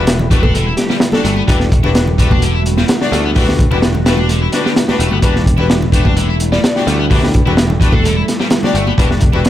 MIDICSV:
0, 0, Header, 1, 7, 480
1, 0, Start_track
1, 0, Key_signature, 1, "minor"
1, 0, Tempo, 468750
1, 1516, Time_signature, 4, 2, 24, 8
1, 9724, End_track
2, 0, Start_track
2, 0, Title_t, "Synth pluck"
2, 0, Program_c, 0, 84
2, 438, Note_on_c, 0, 69, 91
2, 513, Note_off_c, 0, 69, 0
2, 553, Note_on_c, 0, 69, 77
2, 634, Note_off_c, 0, 69, 0
2, 788, Note_on_c, 0, 67, 91
2, 911, Note_off_c, 0, 67, 0
2, 1155, Note_on_c, 0, 69, 90
2, 1231, Note_off_c, 0, 69, 0
2, 1271, Note_on_c, 0, 69, 80
2, 1353, Note_off_c, 0, 69, 0
2, 6679, Note_on_c, 0, 74, 91
2, 6753, Note_off_c, 0, 74, 0
2, 6789, Note_on_c, 0, 74, 78
2, 6872, Note_off_c, 0, 74, 0
2, 8116, Note_on_c, 0, 69, 90
2, 8192, Note_off_c, 0, 69, 0
2, 8232, Note_on_c, 0, 69, 77
2, 8314, Note_off_c, 0, 69, 0
2, 9724, End_track
3, 0, Start_track
3, 0, Title_t, "String section"
3, 0, Program_c, 1, 48
3, 312, Note_on_c, 1, 62, 86
3, 312, Note_on_c, 1, 66, 77
3, 312, Note_on_c, 1, 71, 95
3, 313, Note_on_c, 1, 67, 77
3, 386, Note_off_c, 1, 62, 0
3, 386, Note_off_c, 1, 66, 0
3, 386, Note_off_c, 1, 71, 0
3, 387, Note_off_c, 1, 67, 0
3, 1161, Note_on_c, 1, 62, 96
3, 1161, Note_on_c, 1, 66, 85
3, 1161, Note_on_c, 1, 67, 86
3, 1161, Note_on_c, 1, 74, 102
3, 1227, Note_off_c, 1, 74, 0
3, 1228, Note_off_c, 1, 62, 0
3, 1228, Note_off_c, 1, 66, 0
3, 1228, Note_off_c, 1, 67, 0
3, 1514, Note_on_c, 1, 62, 98
3, 1514, Note_on_c, 1, 66, 90
3, 1514, Note_on_c, 1, 67, 90
3, 1515, Note_on_c, 1, 71, 108
3, 1587, Note_off_c, 1, 62, 0
3, 1587, Note_off_c, 1, 66, 0
3, 1587, Note_off_c, 1, 67, 0
3, 1588, Note_off_c, 1, 71, 0
3, 1879, Note_on_c, 1, 71, 99
3, 1880, Note_on_c, 1, 62, 88
3, 1880, Note_on_c, 1, 66, 80
3, 1880, Note_on_c, 1, 67, 78
3, 1947, Note_off_c, 1, 62, 0
3, 1947, Note_off_c, 1, 66, 0
3, 1947, Note_off_c, 1, 67, 0
3, 1947, Note_off_c, 1, 71, 0
3, 2236, Note_on_c, 1, 66, 79
3, 2236, Note_on_c, 1, 71, 93
3, 2237, Note_on_c, 1, 62, 84
3, 2237, Note_on_c, 1, 67, 78
3, 2308, Note_off_c, 1, 66, 0
3, 2308, Note_off_c, 1, 71, 0
3, 2309, Note_off_c, 1, 62, 0
3, 2309, Note_off_c, 1, 67, 0
3, 3079, Note_on_c, 1, 74, 101
3, 3080, Note_on_c, 1, 62, 92
3, 3080, Note_on_c, 1, 66, 82
3, 3081, Note_on_c, 1, 67, 81
3, 3147, Note_off_c, 1, 62, 0
3, 3147, Note_off_c, 1, 66, 0
3, 3147, Note_off_c, 1, 67, 0
3, 3147, Note_off_c, 1, 74, 0
3, 3434, Note_on_c, 1, 62, 95
3, 3434, Note_on_c, 1, 71, 106
3, 3435, Note_on_c, 1, 66, 88
3, 3435, Note_on_c, 1, 67, 87
3, 3507, Note_off_c, 1, 62, 0
3, 3507, Note_off_c, 1, 71, 0
3, 3508, Note_off_c, 1, 66, 0
3, 3508, Note_off_c, 1, 67, 0
3, 3800, Note_on_c, 1, 66, 81
3, 3800, Note_on_c, 1, 67, 81
3, 3800, Note_on_c, 1, 71, 96
3, 3801, Note_on_c, 1, 62, 87
3, 3867, Note_off_c, 1, 62, 0
3, 3867, Note_off_c, 1, 66, 0
3, 3867, Note_off_c, 1, 67, 0
3, 3867, Note_off_c, 1, 71, 0
3, 4155, Note_on_c, 1, 62, 83
3, 4155, Note_on_c, 1, 67, 77
3, 4155, Note_on_c, 1, 71, 96
3, 4156, Note_on_c, 1, 66, 76
3, 4228, Note_off_c, 1, 62, 0
3, 4228, Note_off_c, 1, 66, 0
3, 4228, Note_off_c, 1, 67, 0
3, 4228, Note_off_c, 1, 71, 0
3, 4635, Note_on_c, 1, 62, 99
3, 4635, Note_on_c, 1, 67, 90
3, 4636, Note_on_c, 1, 66, 91
3, 4636, Note_on_c, 1, 71, 105
3, 4708, Note_off_c, 1, 62, 0
3, 4708, Note_off_c, 1, 66, 0
3, 4708, Note_off_c, 1, 67, 0
3, 4708, Note_off_c, 1, 71, 0
3, 5000, Note_on_c, 1, 66, 87
3, 5000, Note_on_c, 1, 67, 87
3, 5000, Note_on_c, 1, 71, 104
3, 5001, Note_on_c, 1, 62, 94
3, 5067, Note_off_c, 1, 62, 0
3, 5067, Note_off_c, 1, 66, 0
3, 5067, Note_off_c, 1, 67, 0
3, 5067, Note_off_c, 1, 71, 0
3, 5353, Note_on_c, 1, 71, 107
3, 5354, Note_on_c, 1, 62, 98
3, 5354, Note_on_c, 1, 66, 89
3, 5354, Note_on_c, 1, 67, 91
3, 5427, Note_off_c, 1, 62, 0
3, 5427, Note_off_c, 1, 66, 0
3, 5427, Note_off_c, 1, 67, 0
3, 5427, Note_off_c, 1, 71, 0
3, 5718, Note_on_c, 1, 62, 86
3, 5718, Note_on_c, 1, 66, 79
3, 5718, Note_on_c, 1, 67, 79
3, 5718, Note_on_c, 1, 71, 97
3, 5786, Note_off_c, 1, 62, 0
3, 5786, Note_off_c, 1, 66, 0
3, 5786, Note_off_c, 1, 67, 0
3, 5786, Note_off_c, 1, 71, 0
3, 6075, Note_on_c, 1, 67, 76
3, 6075, Note_on_c, 1, 71, 95
3, 6076, Note_on_c, 1, 66, 79
3, 6077, Note_on_c, 1, 62, 85
3, 6148, Note_off_c, 1, 66, 0
3, 6148, Note_off_c, 1, 67, 0
3, 6148, Note_off_c, 1, 71, 0
3, 6149, Note_off_c, 1, 62, 0
3, 6919, Note_on_c, 1, 66, 86
3, 6920, Note_on_c, 1, 62, 90
3, 6920, Note_on_c, 1, 67, 85
3, 6920, Note_on_c, 1, 74, 101
3, 6987, Note_off_c, 1, 62, 0
3, 6987, Note_off_c, 1, 66, 0
3, 6987, Note_off_c, 1, 67, 0
3, 6987, Note_off_c, 1, 74, 0
3, 7271, Note_on_c, 1, 71, 107
3, 7272, Note_on_c, 1, 66, 89
3, 7272, Note_on_c, 1, 67, 89
3, 7273, Note_on_c, 1, 62, 97
3, 7346, Note_off_c, 1, 62, 0
3, 7346, Note_off_c, 1, 66, 0
3, 7346, Note_off_c, 1, 67, 0
3, 7346, Note_off_c, 1, 71, 0
3, 7639, Note_on_c, 1, 66, 79
3, 7640, Note_on_c, 1, 62, 87
3, 7640, Note_on_c, 1, 67, 80
3, 7640, Note_on_c, 1, 71, 98
3, 7706, Note_off_c, 1, 66, 0
3, 7707, Note_off_c, 1, 62, 0
3, 7707, Note_off_c, 1, 67, 0
3, 7707, Note_off_c, 1, 71, 0
3, 7994, Note_on_c, 1, 62, 84
3, 7994, Note_on_c, 1, 66, 78
3, 7994, Note_on_c, 1, 67, 80
3, 7995, Note_on_c, 1, 71, 97
3, 8067, Note_off_c, 1, 62, 0
3, 8067, Note_off_c, 1, 66, 0
3, 8067, Note_off_c, 1, 67, 0
3, 8067, Note_off_c, 1, 71, 0
3, 8839, Note_on_c, 1, 62, 93
3, 8839, Note_on_c, 1, 66, 84
3, 8839, Note_on_c, 1, 67, 85
3, 8840, Note_on_c, 1, 74, 102
3, 8906, Note_off_c, 1, 62, 0
3, 8906, Note_off_c, 1, 66, 0
3, 8907, Note_off_c, 1, 67, 0
3, 8907, Note_off_c, 1, 74, 0
3, 9194, Note_on_c, 1, 66, 87
3, 9195, Note_on_c, 1, 67, 87
3, 9195, Note_on_c, 1, 71, 108
3, 9196, Note_on_c, 1, 62, 96
3, 9267, Note_off_c, 1, 66, 0
3, 9268, Note_off_c, 1, 62, 0
3, 9268, Note_off_c, 1, 67, 0
3, 9268, Note_off_c, 1, 71, 0
3, 9559, Note_on_c, 1, 67, 81
3, 9559, Note_on_c, 1, 71, 94
3, 9561, Note_on_c, 1, 62, 86
3, 9561, Note_on_c, 1, 66, 80
3, 9626, Note_off_c, 1, 67, 0
3, 9627, Note_off_c, 1, 62, 0
3, 9627, Note_off_c, 1, 66, 0
3, 9627, Note_off_c, 1, 71, 0
3, 9724, End_track
4, 0, Start_track
4, 0, Title_t, "Ambient pad"
4, 0, Program_c, 2, 92
4, 0, Note_on_c, 2, 50, 90
4, 0, Note_on_c, 2, 55, 80
4, 0, Note_on_c, 2, 57, 80
4, 0, Note_on_c, 2, 64, 96
4, 1502, Note_off_c, 2, 64, 0
4, 1511, Note_on_c, 2, 66, 96
4, 5339, Note_off_c, 2, 66, 0
4, 5360, Note_on_c, 2, 64, 92
4, 9184, Note_off_c, 2, 64, 0
4, 9198, Note_on_c, 2, 62, 96
4, 9724, Note_off_c, 2, 50, 0
4, 9724, Note_off_c, 2, 55, 0
4, 9724, Note_off_c, 2, 57, 0
4, 9724, Note_off_c, 2, 62, 0
4, 9724, End_track
5, 0, Start_track
5, 0, Title_t, "Distorted electric guitar"
5, 0, Program_c, 3, 30
5, 316, Note_on_c, 3, 57, 81
5, 418, Note_off_c, 3, 57, 0
5, 440, Note_on_c, 3, 62, 80
5, 544, Note_off_c, 3, 62, 0
5, 554, Note_on_c, 3, 50, 100
5, 657, Note_off_c, 3, 50, 0
5, 680, Note_on_c, 3, 64, 99
5, 737, Note_off_c, 3, 64, 0
5, 920, Note_on_c, 3, 55, 80
5, 977, Note_off_c, 3, 55, 0
5, 1273, Note_on_c, 3, 57, 81
5, 1376, Note_off_c, 3, 57, 0
5, 1397, Note_on_c, 3, 59, 100
5, 1455, Note_off_c, 3, 59, 0
5, 1515, Note_on_c, 3, 52, 100
5, 1617, Note_off_c, 3, 52, 0
5, 1880, Note_on_c, 3, 64, 75
5, 1937, Note_off_c, 3, 64, 0
5, 2241, Note_on_c, 3, 57, 78
5, 2341, Note_off_c, 3, 57, 0
5, 2370, Note_on_c, 3, 62, 77
5, 2468, Note_off_c, 3, 62, 0
5, 2482, Note_on_c, 3, 50, 100
5, 2581, Note_off_c, 3, 50, 0
5, 2606, Note_on_c, 3, 64, 101
5, 2659, Note_off_c, 3, 64, 0
5, 2848, Note_on_c, 3, 55, 80
5, 2900, Note_off_c, 3, 55, 0
5, 3197, Note_on_c, 3, 57, 82
5, 3299, Note_off_c, 3, 57, 0
5, 3328, Note_on_c, 3, 59, 100
5, 3380, Note_off_c, 3, 59, 0
5, 3441, Note_on_c, 3, 52, 106
5, 3540, Note_off_c, 3, 52, 0
5, 3805, Note_on_c, 3, 64, 74
5, 3859, Note_off_c, 3, 64, 0
5, 4161, Note_on_c, 3, 57, 79
5, 4260, Note_off_c, 3, 57, 0
5, 4279, Note_on_c, 3, 62, 80
5, 4383, Note_off_c, 3, 62, 0
5, 4393, Note_on_c, 3, 50, 101
5, 4497, Note_off_c, 3, 50, 0
5, 4521, Note_on_c, 3, 64, 99
5, 4577, Note_off_c, 3, 64, 0
5, 4755, Note_on_c, 3, 55, 78
5, 4814, Note_off_c, 3, 55, 0
5, 5112, Note_on_c, 3, 57, 80
5, 5216, Note_off_c, 3, 57, 0
5, 5234, Note_on_c, 3, 59, 101
5, 5294, Note_off_c, 3, 59, 0
5, 5353, Note_on_c, 3, 52, 105
5, 5456, Note_off_c, 3, 52, 0
5, 5715, Note_on_c, 3, 64, 76
5, 5774, Note_off_c, 3, 64, 0
5, 6073, Note_on_c, 3, 57, 78
5, 6177, Note_off_c, 3, 57, 0
5, 6196, Note_on_c, 3, 62, 78
5, 6302, Note_off_c, 3, 62, 0
5, 6311, Note_on_c, 3, 50, 99
5, 6415, Note_off_c, 3, 50, 0
5, 6437, Note_on_c, 3, 64, 100
5, 6495, Note_off_c, 3, 64, 0
5, 6680, Note_on_c, 3, 55, 79
5, 6737, Note_off_c, 3, 55, 0
5, 7036, Note_on_c, 3, 57, 80
5, 7138, Note_off_c, 3, 57, 0
5, 7162, Note_on_c, 3, 59, 102
5, 7217, Note_off_c, 3, 59, 0
5, 7275, Note_on_c, 3, 52, 103
5, 7377, Note_off_c, 3, 52, 0
5, 7640, Note_on_c, 3, 64, 76
5, 7696, Note_off_c, 3, 64, 0
5, 7996, Note_on_c, 3, 57, 77
5, 8098, Note_off_c, 3, 57, 0
5, 8118, Note_on_c, 3, 62, 78
5, 8222, Note_off_c, 3, 62, 0
5, 8234, Note_on_c, 3, 50, 100
5, 8337, Note_off_c, 3, 50, 0
5, 8361, Note_on_c, 3, 64, 103
5, 8417, Note_off_c, 3, 64, 0
5, 8600, Note_on_c, 3, 55, 80
5, 8657, Note_off_c, 3, 55, 0
5, 8957, Note_on_c, 3, 57, 79
5, 9059, Note_off_c, 3, 57, 0
5, 9076, Note_on_c, 3, 59, 101
5, 9135, Note_off_c, 3, 59, 0
5, 9195, Note_on_c, 3, 52, 103
5, 9298, Note_off_c, 3, 52, 0
5, 9560, Note_on_c, 3, 64, 74
5, 9617, Note_off_c, 3, 64, 0
5, 9724, End_track
6, 0, Start_track
6, 0, Title_t, "Picked electric bass"
6, 0, Program_c, 4, 34
6, 0, Note_on_c, 4, 28, 102
6, 736, Note_off_c, 4, 28, 0
6, 1276, Note_on_c, 4, 31, 81
6, 1442, Note_off_c, 4, 31, 0
6, 1516, Note_on_c, 4, 28, 103
6, 2897, Note_off_c, 4, 28, 0
6, 3197, Note_on_c, 4, 38, 91
6, 3737, Note_off_c, 4, 38, 0
6, 3800, Note_on_c, 4, 28, 106
6, 4576, Note_off_c, 4, 28, 0
6, 5114, Note_on_c, 4, 28, 92
6, 5200, Note_off_c, 4, 28, 0
6, 5242, Note_on_c, 4, 31, 82
6, 5319, Note_off_c, 4, 31, 0
6, 5350, Note_on_c, 4, 28, 104
6, 6733, Note_off_c, 4, 28, 0
6, 7036, Note_on_c, 4, 38, 96
6, 7577, Note_off_c, 4, 38, 0
6, 7640, Note_on_c, 4, 28, 109
6, 8416, Note_off_c, 4, 28, 0
6, 8955, Note_on_c, 4, 31, 83
6, 9121, Note_off_c, 4, 31, 0
6, 9194, Note_on_c, 4, 28, 102
6, 9724, Note_off_c, 4, 28, 0
6, 9724, End_track
7, 0, Start_track
7, 0, Title_t, "Drums"
7, 72, Note_on_c, 9, 42, 88
7, 77, Note_on_c, 9, 38, 106
7, 174, Note_off_c, 9, 42, 0
7, 179, Note_off_c, 9, 38, 0
7, 198, Note_on_c, 9, 64, 90
7, 301, Note_off_c, 9, 64, 0
7, 317, Note_on_c, 9, 36, 100
7, 319, Note_on_c, 9, 42, 62
7, 419, Note_off_c, 9, 36, 0
7, 421, Note_off_c, 9, 42, 0
7, 440, Note_on_c, 9, 36, 93
7, 444, Note_on_c, 9, 63, 89
7, 542, Note_off_c, 9, 36, 0
7, 546, Note_off_c, 9, 63, 0
7, 561, Note_on_c, 9, 42, 87
7, 664, Note_off_c, 9, 42, 0
7, 792, Note_on_c, 9, 42, 64
7, 803, Note_on_c, 9, 38, 43
7, 894, Note_off_c, 9, 42, 0
7, 905, Note_off_c, 9, 38, 0
7, 920, Note_on_c, 9, 38, 46
7, 1023, Note_off_c, 9, 38, 0
7, 1025, Note_on_c, 9, 38, 106
7, 1041, Note_on_c, 9, 42, 96
7, 1128, Note_off_c, 9, 38, 0
7, 1143, Note_off_c, 9, 42, 0
7, 1149, Note_on_c, 9, 63, 80
7, 1161, Note_on_c, 9, 38, 57
7, 1251, Note_off_c, 9, 63, 0
7, 1264, Note_off_c, 9, 38, 0
7, 1279, Note_on_c, 9, 42, 72
7, 1381, Note_off_c, 9, 42, 0
7, 1395, Note_on_c, 9, 63, 70
7, 1497, Note_off_c, 9, 63, 0
7, 1516, Note_on_c, 9, 36, 99
7, 1524, Note_on_c, 9, 42, 85
7, 1618, Note_off_c, 9, 36, 0
7, 1627, Note_off_c, 9, 42, 0
7, 1638, Note_on_c, 9, 38, 43
7, 1740, Note_off_c, 9, 38, 0
7, 1760, Note_on_c, 9, 36, 103
7, 1760, Note_on_c, 9, 42, 70
7, 1862, Note_off_c, 9, 36, 0
7, 1862, Note_off_c, 9, 42, 0
7, 1881, Note_on_c, 9, 64, 84
7, 1983, Note_off_c, 9, 64, 0
7, 1996, Note_on_c, 9, 42, 87
7, 1999, Note_on_c, 9, 38, 113
7, 2098, Note_off_c, 9, 42, 0
7, 2101, Note_off_c, 9, 38, 0
7, 2125, Note_on_c, 9, 64, 89
7, 2228, Note_off_c, 9, 64, 0
7, 2236, Note_on_c, 9, 36, 97
7, 2243, Note_on_c, 9, 42, 65
7, 2338, Note_off_c, 9, 36, 0
7, 2346, Note_off_c, 9, 42, 0
7, 2365, Note_on_c, 9, 36, 100
7, 2367, Note_on_c, 9, 63, 106
7, 2467, Note_off_c, 9, 36, 0
7, 2469, Note_off_c, 9, 63, 0
7, 2479, Note_on_c, 9, 42, 81
7, 2581, Note_off_c, 9, 42, 0
7, 2722, Note_on_c, 9, 42, 68
7, 2824, Note_off_c, 9, 42, 0
7, 2841, Note_on_c, 9, 38, 49
7, 2845, Note_on_c, 9, 63, 68
7, 2943, Note_off_c, 9, 38, 0
7, 2947, Note_off_c, 9, 63, 0
7, 2951, Note_on_c, 9, 42, 84
7, 2961, Note_on_c, 9, 38, 109
7, 3054, Note_off_c, 9, 42, 0
7, 3064, Note_off_c, 9, 38, 0
7, 3086, Note_on_c, 9, 38, 56
7, 3189, Note_off_c, 9, 38, 0
7, 3204, Note_on_c, 9, 38, 38
7, 3204, Note_on_c, 9, 42, 72
7, 3306, Note_off_c, 9, 42, 0
7, 3307, Note_off_c, 9, 38, 0
7, 3438, Note_on_c, 9, 46, 83
7, 3443, Note_on_c, 9, 36, 99
7, 3540, Note_off_c, 9, 46, 0
7, 3546, Note_off_c, 9, 36, 0
7, 3570, Note_on_c, 9, 38, 51
7, 3672, Note_off_c, 9, 38, 0
7, 3677, Note_on_c, 9, 36, 103
7, 3689, Note_on_c, 9, 42, 69
7, 3779, Note_off_c, 9, 36, 0
7, 3792, Note_off_c, 9, 42, 0
7, 3805, Note_on_c, 9, 64, 76
7, 3907, Note_off_c, 9, 64, 0
7, 3915, Note_on_c, 9, 38, 112
7, 3919, Note_on_c, 9, 42, 79
7, 4017, Note_off_c, 9, 38, 0
7, 4022, Note_off_c, 9, 42, 0
7, 4042, Note_on_c, 9, 64, 82
7, 4144, Note_off_c, 9, 64, 0
7, 4158, Note_on_c, 9, 38, 109
7, 4158, Note_on_c, 9, 42, 81
7, 4260, Note_off_c, 9, 42, 0
7, 4261, Note_off_c, 9, 38, 0
7, 4275, Note_on_c, 9, 63, 91
7, 4377, Note_off_c, 9, 63, 0
7, 4395, Note_on_c, 9, 42, 82
7, 4498, Note_off_c, 9, 42, 0
7, 4633, Note_on_c, 9, 42, 72
7, 4642, Note_on_c, 9, 38, 36
7, 4735, Note_off_c, 9, 42, 0
7, 4745, Note_off_c, 9, 38, 0
7, 4773, Note_on_c, 9, 38, 44
7, 4875, Note_off_c, 9, 38, 0
7, 4878, Note_on_c, 9, 38, 108
7, 4882, Note_on_c, 9, 42, 88
7, 4980, Note_off_c, 9, 38, 0
7, 4984, Note_off_c, 9, 42, 0
7, 5000, Note_on_c, 9, 38, 58
7, 5006, Note_on_c, 9, 63, 88
7, 5102, Note_off_c, 9, 38, 0
7, 5109, Note_off_c, 9, 63, 0
7, 5121, Note_on_c, 9, 42, 69
7, 5223, Note_off_c, 9, 42, 0
7, 5235, Note_on_c, 9, 63, 72
7, 5337, Note_off_c, 9, 63, 0
7, 5349, Note_on_c, 9, 36, 100
7, 5350, Note_on_c, 9, 42, 78
7, 5452, Note_off_c, 9, 36, 0
7, 5452, Note_off_c, 9, 42, 0
7, 5486, Note_on_c, 9, 38, 47
7, 5589, Note_off_c, 9, 38, 0
7, 5593, Note_on_c, 9, 36, 88
7, 5602, Note_on_c, 9, 42, 63
7, 5695, Note_off_c, 9, 36, 0
7, 5704, Note_off_c, 9, 42, 0
7, 5711, Note_on_c, 9, 64, 69
7, 5813, Note_off_c, 9, 64, 0
7, 5834, Note_on_c, 9, 38, 112
7, 5842, Note_on_c, 9, 42, 92
7, 5936, Note_off_c, 9, 38, 0
7, 5944, Note_off_c, 9, 42, 0
7, 5963, Note_on_c, 9, 64, 78
7, 6066, Note_off_c, 9, 64, 0
7, 6066, Note_on_c, 9, 36, 90
7, 6074, Note_on_c, 9, 42, 67
7, 6168, Note_off_c, 9, 36, 0
7, 6176, Note_off_c, 9, 42, 0
7, 6197, Note_on_c, 9, 36, 94
7, 6205, Note_on_c, 9, 63, 99
7, 6299, Note_off_c, 9, 36, 0
7, 6307, Note_off_c, 9, 63, 0
7, 6315, Note_on_c, 9, 42, 85
7, 6417, Note_off_c, 9, 42, 0
7, 6553, Note_on_c, 9, 42, 68
7, 6655, Note_off_c, 9, 42, 0
7, 6679, Note_on_c, 9, 63, 60
7, 6681, Note_on_c, 9, 38, 51
7, 6782, Note_off_c, 9, 63, 0
7, 6783, Note_off_c, 9, 38, 0
7, 6798, Note_on_c, 9, 42, 82
7, 6799, Note_on_c, 9, 38, 116
7, 6900, Note_off_c, 9, 42, 0
7, 6901, Note_off_c, 9, 38, 0
7, 6922, Note_on_c, 9, 38, 53
7, 7024, Note_off_c, 9, 38, 0
7, 7038, Note_on_c, 9, 38, 41
7, 7041, Note_on_c, 9, 42, 69
7, 7140, Note_off_c, 9, 38, 0
7, 7144, Note_off_c, 9, 42, 0
7, 7278, Note_on_c, 9, 36, 105
7, 7279, Note_on_c, 9, 46, 87
7, 7381, Note_off_c, 9, 36, 0
7, 7382, Note_off_c, 9, 46, 0
7, 7407, Note_on_c, 9, 38, 56
7, 7510, Note_off_c, 9, 38, 0
7, 7518, Note_on_c, 9, 42, 68
7, 7525, Note_on_c, 9, 36, 98
7, 7620, Note_off_c, 9, 42, 0
7, 7627, Note_off_c, 9, 36, 0
7, 7651, Note_on_c, 9, 64, 69
7, 7753, Note_on_c, 9, 38, 117
7, 7754, Note_off_c, 9, 64, 0
7, 7763, Note_on_c, 9, 42, 92
7, 7856, Note_off_c, 9, 38, 0
7, 7866, Note_off_c, 9, 42, 0
7, 7884, Note_on_c, 9, 64, 80
7, 7987, Note_off_c, 9, 64, 0
7, 7996, Note_on_c, 9, 36, 95
7, 8004, Note_on_c, 9, 42, 64
7, 8098, Note_off_c, 9, 36, 0
7, 8107, Note_off_c, 9, 42, 0
7, 8113, Note_on_c, 9, 36, 99
7, 8122, Note_on_c, 9, 63, 95
7, 8215, Note_off_c, 9, 36, 0
7, 8224, Note_off_c, 9, 63, 0
7, 8246, Note_on_c, 9, 42, 93
7, 8349, Note_off_c, 9, 42, 0
7, 8481, Note_on_c, 9, 42, 62
7, 8486, Note_on_c, 9, 38, 42
7, 8584, Note_off_c, 9, 42, 0
7, 8589, Note_off_c, 9, 38, 0
7, 8603, Note_on_c, 9, 38, 46
7, 8705, Note_off_c, 9, 38, 0
7, 8708, Note_on_c, 9, 42, 95
7, 8712, Note_on_c, 9, 38, 112
7, 8811, Note_off_c, 9, 42, 0
7, 8814, Note_off_c, 9, 38, 0
7, 8837, Note_on_c, 9, 63, 74
7, 8850, Note_on_c, 9, 38, 52
7, 8939, Note_off_c, 9, 63, 0
7, 8953, Note_off_c, 9, 38, 0
7, 8959, Note_on_c, 9, 42, 71
7, 9061, Note_off_c, 9, 42, 0
7, 9084, Note_on_c, 9, 63, 66
7, 9187, Note_off_c, 9, 63, 0
7, 9195, Note_on_c, 9, 36, 103
7, 9208, Note_on_c, 9, 42, 78
7, 9298, Note_off_c, 9, 36, 0
7, 9310, Note_off_c, 9, 42, 0
7, 9326, Note_on_c, 9, 38, 43
7, 9427, Note_on_c, 9, 42, 75
7, 9428, Note_off_c, 9, 38, 0
7, 9446, Note_on_c, 9, 36, 101
7, 9529, Note_off_c, 9, 42, 0
7, 9549, Note_off_c, 9, 36, 0
7, 9558, Note_on_c, 9, 64, 72
7, 9661, Note_off_c, 9, 64, 0
7, 9673, Note_on_c, 9, 42, 83
7, 9685, Note_on_c, 9, 38, 125
7, 9724, Note_off_c, 9, 38, 0
7, 9724, Note_off_c, 9, 42, 0
7, 9724, End_track
0, 0, End_of_file